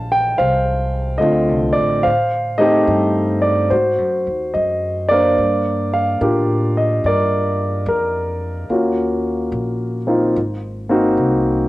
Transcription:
Already playing: A#1 C5 F5 A5
0.12 G5
0.38 C2 C5 F5
1.18 D3 A3 C4 F4 D#5
1.22 D2
1.49 C2
1.73 D5
1.78 A1
2.03 A2 C5 F5
2.58 A3 C4 D#4 G4 D#5
2.87 G2
3.42 D5
3.70 G#2 F#4 C5
3.98 F#2
4.27 D#2
4.54 F#2 D#5
5.09 A#3 D4 A#4 D5 F5
5.13 C5
5.38 G2
5.93 F5
6.21 A2 D4 F4 G4 A#4
6.77 D#5
7.04 G2 A#4 D5
7.86 F2 A#4
8.70 D#2 A#3 C#4 F4 F#4
9.52 A#1
10.07 A#3 C4 D#4 F4
10.36 G#1
10.89 A#3 C4 D#4 F#4
11.17 C2

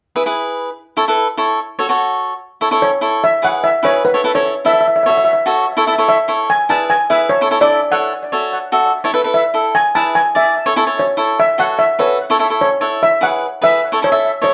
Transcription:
0.16 E4 G#4 B4
0.26 E4 G#4 B4
0.97 E4 A4 C#5
1.08 E4 A4 B4
1.37 E4 A4 C#5
1.79 F#4 A4 C#5
1.89 F#4 A4 C#5
2.61 E4 A4 C#5
2.71 E4 A4 C#5
2.82 C#5
3.01 E4 A4 C#5
3.24 E5
3.42 E4 G#4 B4 F#5
3.64 E5
3.83 E4 G#4 B4 C#5
4.05 B4
4.14 E4 A4 C#5
4.24 E4 A4 B4
4.35 E4 A4 C#5
4.65 E4 A4 E5
4.73 E5
4.81 E5
4.88 E5
4.96 E5
5.03 F#4 A4 C#5 E5
5.10 E5
5.17 E5
5.25 E5
5.33 E5
5.46 F#4 A4 C#5
5.77 E4 A4 C#5
5.87 E4 A4 E5
5.98 E4 A4 C#5
6.09 E5
6.28 E4 A4 C#5
6.50 G#5
6.69 E4 G#4 B4 A5
6.90 G#5
7.10 E4 G#4 B4 E5
7.29 C#5
7.41 E4 A4 C#5
7.51 E4 A4 C#5
7.61 E4 A4 D5 E5
7.92 E4 A4 C#5 F#5
8.32 F#4 A4 C#5
8.72 F#4 A4 E5
9.04 E4 A4 C#5
9.14 E4 A4 B4
9.24 E4 A4 B4
9.34 E5
9.54 E4 A4 E5
9.75 G#5
9.95 E4 G#4 B4 A5
10.15 G#5
10.35 E4 G#4 D5 E5
10.66 E4 A4 C#5
10.76 E4 A4 C#5
10.87 E4 A4 C#5
10.99 C#5
11.17 E4 A4 C#5
11.40 E5
11.58 F#4 A4 C#5 F#5
11.79 E5
11.99 F#4 A4 B4 C#5
12.30 E4 A4 C#5
12.39 E4 A4 C#5
12.50 E4 A4 C#5
12.61 C#5
12.81 E4 A4 C#5
13.03 E5
13.21 E4 G#4 B4 F#5
13.62 E4 G#4 B4 E5
13.92 E4 A4 C#5
14.02 E4 A4 C#5 E5
14.12 E4 A4 E5
14.42 E4 A4 C#5

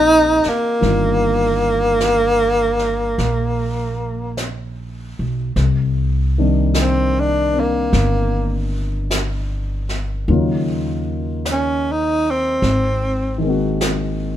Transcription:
Already playing: A#1 F3 G3 A#3 C4 D#4 F4 G4 D5
0.43 muted upright bass stroke, snare
0.49 A#3
0.80 G1 D#3 G3 A#3 D4, brush sweep, snare
0.85 F4
2.00 brush sweep, snare, hi-hat pedal
2.79 snare
3.18 A#1, brush sweep, snare
4.37 brush sweep, snare, hi-hat pedal
5.19 B1
5.56 C2, brush sweep, snare
6.38 D#3 G3 A#3 C4 D4
6.74 brush sweep, snare, hi-hat pedal
6.81 C4
7.20 D4
7.53 A#3 C4 D4
7.60 A#3
7.93 G1, brush sweep, snare
9.11 brush sweep, snare, hi-hat pedal
9.89 snare
10.28 D#2 C#3 D#3 F#3 A#3 F4, brush sweep
11.45 brush sweep, snare, hi-hat pedal
11.52 C#4
11.92 D#4
12.30 C4
12.62 G#1, brush sweep, snare
13.38 D#3 G#3
13.44 A#3 C4
13.49 F#4
13.81 brush sweep, snare, hi-hat pedal

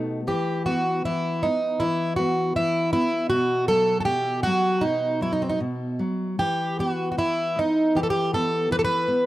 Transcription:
Already playing: B2 A3 B3 D#4
0.27 E3 G4
0.66 B3 F#4
1.05 E3 E4
1.43 B3 D#4
1.80 E3 E4
2.16 B3 F#4
2.56 E3 E4
2.93 B3 E4
3.30 B2 F#4
3.68 F#3 A4
4.00 A4
4.05 B2 G4
4.43 F#3 F#4
4.81 B2 D#4
5.21 F#3 E4
5.33 D#4
5.42 C4
5.49 D#4
5.60 B2
5.99 F#3
6.39 E3 G4
6.79 B3 F#4
7.12 F#4
7.18 E3 E4
7.56 B3 D#4
7.95 E3 G4
8.03 A4
8.10 G4
8.33 B3 A4
8.71 E3 B4
8.79 A4
8.85 B4
9.08 B3

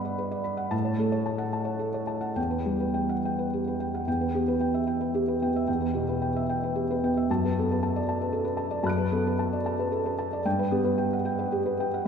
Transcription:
Already playing: G2 B3 B4 D5 F#5 B5
0.05 D5
0.18 B4
0.31 D5
0.44 B5
0.57 F#5
0.71 A2 A5
0.85 C#5
0.98 A3 A4
1.12 C#5
1.26 A5
1.38 F#5
1.53 A5
1.65 C#5
1.79 A4
1.94 C#5
2.07 A5
2.21 F#5
2.36 E2 G5
2.51 B4
2.66 G3 G4
2.80 B4
2.94 G5
3.09 F#5
3.25 G5
3.39 B4
3.53 G4
3.67 B4
3.80 G5
3.95 F#5
4.07 E2 G5
4.21 B4
4.35 B3 G4
4.48 B4
4.61 G5
4.74 E5
4.87 G5
5.01 B4
5.15 G4
5.28 B4
5.42 B3 G5
5.56 E5
5.67 E2 G5
5.80 B4
5.94 B2 G4
6.09 B4
6.22 G5
6.36 E5
6.49 G5
6.63 B4
6.76 G4
6.91 B4
7.04 B3 G5
7.17 E5
7.30 F#2 A5
7.45 B4
7.58 B3 A4
7.72 B4
7.83 A5
7.96 D5
8.09 A5
8.21 B4
8.33 A4
8.45 B4
8.57 A5
8.71 D5
8.83 F#2 A5 B5 F#6
8.89 D7
8.98 B4
9.12 B3 A4
9.27 B4
9.39 A5
9.53 D5
9.66 A5
9.79 B4
9.92 A4
10.06 B4
10.19 A5
10.33 D5
10.46 G2 G5
10.59 B4
10.71 B3 G4
10.84 B4
10.98 G5
11.13 F#5
11.25 G5
11.39 B4
11.52 G4
11.66 B4
11.80 G5
11.94 F#5

